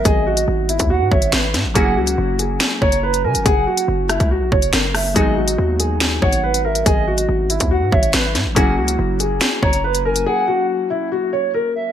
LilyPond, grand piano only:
\new Staff \with { instrumentName = "Grand piano" } { \time 4/4 \key fis \mixolydian \tempo 4 = 141 gis'8 fis'4 e'8 fis'8 cis''8 b'8 r8 | gis'8 fis'4 gis'4 cis''8 b'8 ais'8 | gis'8 fis'4 e'8 fis'8 cis''8 ais'8 r8 | gis'8 fis'4 gis'4 cis''8 b'8 ais'8 |
gis'8 fis'4 e'8 fis'8 cis''8 b'8 r8 | gis'8 fis'4 gis'4 cis''8 b'8 ais'8 | gis'8 fis'4 e'8 fis'8 cis''8 ais'8 r8 | }